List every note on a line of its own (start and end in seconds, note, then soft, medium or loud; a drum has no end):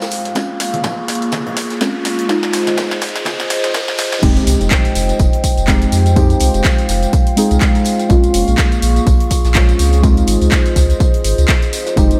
0.00 0.32 G#3 medium
0.00 0.33 G#3 medium
0.00 0.33 C4 medium
0.00 0.33 D#4 medium
0.00 0.32 F4 medium
0.00 0.34 G#4 medium
0.00 0.32 C5 medium
0.00 2.25 F5 medium
0.00 0.32 G5 medium
0.00 snare loud
0.00 tambourine medium
0.00 riser medium
0.11 open hi-hat loud
0.11 tambourine medium
0.25 snare soft
0.25 closed hi-hat medium
0.35 1.78 G#3 medium
0.35 2.27 A#3 medium
0.35 1.78 C4 medium
0.35 1.79 C#4 medium
0.35 4.19 F4 medium
0.35 1.79 F4 loud
0.35 2.27 G#4 medium
0.35 2.27 C#6 medium
0.35 kick loud
0.35 snare medium
0.35 closed hi-hat medium
0.35 tambourine medium
0.60 snare medium
0.60 open hi-hat loud
0.60 tambourine medium
0.74 closed hi-hat medium
0.74 high conga medium
0.83 kick loud
0.83 snare loud
0.83 snare medium
0.83 closed hi-hat medium
0.83 tambourine medium
0.83 low conga loud
1.08 snare medium
1.08 open hi-hat loud
1.08 tambourine medium
1.15 closed hi-hat medium
1.22 closed hi-hat medium
1.32 kick loud
1.32 snare medium
1.32 closed hi-hat medium
1.32 tambourine medium
1.32 high conga loud
1.47 closed hi-hat soft
1.47 low conga medium
1.57 kick medium
1.57 snare medium
1.57 snare soft
1.57 open hi-hat loud
1.57 tambourine medium
1.70 snare soft
1.70 closed hi-hat medium
1.80 2.27 G#3 medium
1.80 2.27 C4 medium
1.80 2.27 C#4 medium
1.80 2.27 F4 medium
1.80 kick loud
1.80 snare medium
1.80 snare loud
1.80 closed hi-hat medium
1.80 tambourine medium
2.05 snare medium
2.05 open hi-hat loud
2.05 tambourine medium
2.19 closed hi-hat soft
2.19 closed hi-hat medium
2.28 3.47 G#3 medium
2.28 3.48 C4 medium
2.28 3.48 D#4 medium
2.28 3.48 F4 loud
2.28 4.21 G#4 medium
2.28 4.21 C5 medium
2.28 4.21 D#5 medium
2.28 kick loud
2.28 snare medium
2.28 closed hi-hat medium
2.28 tambourine medium
2.43 snare medium
2.53 snare loud
2.53 open hi-hat loud
2.53 tambourine medium
2.67 snare medium
2.67 closed hi-hat soft
2.67 high conga medium
2.77 kick loud
2.77 snare loud
2.77 closed hi-hat medium
2.77 tambourine medium
2.77 low conga loud
2.91 snare medium
3.01 kick medium
3.01 snare loud
3.01 snare soft
3.01 open hi-hat loud
3.01 tambourine medium
3.09 closed hi-hat medium
3.15 snare medium
3.15 closed hi-hat soft
3.15 closed hi-hat medium
3.25 kick loud
3.25 snare loud
3.25 closed hi-hat medium
3.25 tambourine medium
3.25 high conga loud
3.40 snare medium
3.40 closed hi-hat soft
3.50 snare loud
3.50 open hi-hat loud
3.50 tambourine medium
3.64 snare medium
3.64 closed hi-hat medium
3.74 kick loud
3.74 snare loud
3.74 closed hi-hat medium
3.74 tambourine loud
3.88 snare medium
3.97 snare loud
3.97 open hi-hat loud
3.97 tambourine medium
4.12 snare soft
4.12 snare loud
4.12 closed hi-hat medium
4.22 4.40 F1 loud
4.22 5.65 G#3 medium
4.22 8.06 G#3 medium
4.22 5.65 C4 medium
4.22 5.66 D#4 medium
4.22 12.20 F4 medium
4.22 5.66 G4 loud
4.22 8.06 C5 medium
4.22 6.14 D#5 medium
4.22 8.06 G5 medium
4.22 kick loud
4.22 closed hi-hat medium
4.22 crash loud
4.22 tambourine medium
4.22 tambourine soft
4.22 impact medium
4.37 closed hi-hat medium
4.37 tambourine soft
4.47 4.56 C2 loud
4.47 open hi-hat loud
4.47 tambourine medium
4.61 4.68 F1 medium
4.61 closed hi-hat soft
4.61 tambourine soft
4.71 kick loud
4.71 snare loud
4.71 clap loud
4.71 closed hi-hat medium
4.71 tambourine medium
4.71 tambourine soft
4.85 closed hi-hat medium
4.85 tambourine soft
4.95 5.12 F1 medium
4.95 open hi-hat loud
4.95 tambourine medium
5.09 closed hi-hat soft
5.09 tambourine soft
5.19 5.29 F1 loud
5.19 kick loud
5.19 closed hi-hat medium
5.19 tambourine medium
5.19 tambourine soft
5.33 closed hi-hat medium
5.33 closed hi-hat soft
5.44 kick medium
5.44 open hi-hat loud
5.44 tambourine medium
5.58 5.86 F1 medium
5.58 closed hi-hat soft
5.58 tambourine soft
5.68 6.14 G#3 medium
5.68 6.14 C4 medium
5.68 6.14 D#4 medium
5.68 6.14 G4 medium
5.68 kick loud
5.68 snare loud
5.68 clap loud
5.68 closed hi-hat medium
5.68 tambourine medium
5.68 tambourine soft
5.82 closed hi-hat medium
5.82 tambourine soft
5.92 6.35 F2 medium
5.92 open hi-hat loud
5.92 tambourine medium
6.06 closed hi-hat soft
6.06 tambourine soft
6.15 7.34 G#3 medium
6.15 7.35 C4 medium
6.15 7.35 D#4 medium
6.15 7.35 G4 loud
6.15 10.00 F5 medium
6.15 kick loud
6.15 closed hi-hat medium
6.15 tambourine medium
6.15 tambourine soft
6.30 closed hi-hat medium
6.30 tambourine soft
6.40 6.50 C2 loud
6.40 open hi-hat loud
6.40 tambourine medium
6.54 6.61 F1 medium
6.54 closed hi-hat soft
6.54 tambourine soft
6.65 kick loud
6.65 snare loud
6.65 clap loud
6.65 closed hi-hat medium
6.65 tambourine medium
6.65 tambourine soft
6.78 closed hi-hat medium
6.78 tambourine soft
6.89 7.06 F1 loud
6.89 snare soft
6.89 open hi-hat loud
6.89 tambourine medium
7.03 closed hi-hat soft
7.03 tambourine soft
7.13 kick loud
7.13 closed hi-hat medium
7.13 tambourine medium
7.13 tambourine soft
7.27 closed hi-hat soft
7.27 closed hi-hat medium
7.36 8.07 G#3 medium
7.36 8.07 C4 medium
7.36 8.08 D#4 medium
7.36 8.08 G#4 medium
7.36 open hi-hat loud
7.36 tambourine medium
7.51 7.58 C2 medium
7.51 closed hi-hat soft
7.51 tambourine soft
7.61 kick loud
7.61 snare loud
7.61 clap loud
7.61 closed hi-hat medium
7.61 tambourine medium
7.61 tambourine soft
7.75 closed hi-hat medium
7.75 tambourine soft
7.85 open hi-hat loud
7.85 tambourine medium
7.86 tambourine medium
7.99 snare soft
7.99 closed hi-hat soft
7.99 tambourine soft
8.09 8.27 A#1 loud
8.09 9.52 G#3 medium
8.09 10.02 A#3 medium
8.09 9.52 C4 medium
8.09 9.53 C#4 medium
8.09 9.53 F4 loud
8.09 11.93 G#4 medium
8.09 10.02 C#6 medium
8.09 kick loud
8.09 closed hi-hat medium
8.09 tambourine medium
8.09 tambourine soft
8.24 closed hi-hat medium
8.24 tambourine soft
8.34 8.43 F1 loud
8.34 open hi-hat loud
8.34 tambourine medium
8.48 8.55 A#1 medium
8.48 closed hi-hat soft
8.48 tambourine soft
8.58 kick loud
8.58 snare loud
8.58 clap loud
8.58 closed hi-hat medium
8.58 tambourine medium
8.58 tambourine soft
8.72 closed hi-hat medium
8.72 tambourine soft
8.82 8.99 A#1 medium
8.82 open hi-hat loud
8.82 tambourine medium
8.96 closed hi-hat soft
8.96 tambourine soft
9.07 9.16 A#1 loud
9.07 kick loud
9.07 closed hi-hat medium
9.07 tambourine medium
9.07 tambourine soft
9.20 closed hi-hat medium
9.30 kick medium
9.30 snare soft
9.30 open hi-hat loud
9.30 tambourine medium
9.45 9.73 A#1 medium
9.45 snare soft
9.45 closed hi-hat soft
9.45 tambourine soft
9.55 10.01 G#3 medium
9.55 10.01 C4 medium
9.55 10.01 C#4 medium
9.55 10.01 F4 medium
9.55 kick loud
9.55 snare loud
9.55 clap loud
9.55 closed hi-hat medium
9.55 tambourine medium
9.55 tambourine soft
9.69 closed hi-hat medium
9.69 tambourine soft
9.79 10.22 C#2 medium
9.79 open hi-hat loud
9.79 tambourine medium
9.92 closed hi-hat soft
9.92 tambourine soft
10.02 11.21 G#3 medium
10.02 11.22 C4 medium
10.02 11.22 D#4 medium
10.02 11.22 F4 loud
10.02 12.20 C5 medium
10.02 12.20 D#5 medium
10.02 kick loud
10.02 closed hi-hat medium
10.02 tambourine medium
10.02 tambourine soft
10.17 closed hi-hat medium
10.17 tambourine soft
10.27 10.37 G#1 loud
10.27 open hi-hat loud
10.27 tambourine medium
10.41 10.48 C#2 medium
10.41 closed hi-hat soft
10.41 tambourine soft
10.52 kick loud
10.52 snare loud
10.52 clap loud
10.52 closed hi-hat medium
10.52 tambourine medium
10.52 tambourine soft
10.66 closed hi-hat medium
10.66 tambourine soft
10.76 10.93 C#2 medium
10.76 kick medium
10.76 snare soft
10.76 open hi-hat loud
10.76 tambourine medium
10.90 closed hi-hat soft
10.90 tambourine soft
11.00 kick loud
11.00 closed hi-hat medium
11.00 tambourine medium
11.00 tambourine soft
11.14 closed hi-hat soft
11.14 closed hi-hat medium
11.24 11.33 G#1 medium
11.24 open hi-hat loud
11.24 tambourine medium
11.38 11.45 C#2 loud
11.38 closed hi-hat soft
11.38 tambourine soft
11.48 kick loud
11.48 snare loud
11.48 clap loud
11.48 closed hi-hat medium
11.48 tambourine medium
11.48 tambourine soft
11.62 closed hi-hat medium
11.62 tambourine soft
11.73 open hi-hat loud
11.73 tambourine medium
11.86 snare soft
11.86 closed hi-hat soft
11.86 tambourine soft
11.96 12.14 F1 loud
11.96 12.20 G#3 medium
11.96 12.20 C4 medium
11.96 12.20 D#4 medium
11.96 12.20 G4 loud
11.96 12.20 G5 medium
11.96 kick loud
11.96 closed hi-hat medium
11.96 tambourine medium
11.96 tambourine soft
12.11 closed hi-hat medium
12.11 tambourine soft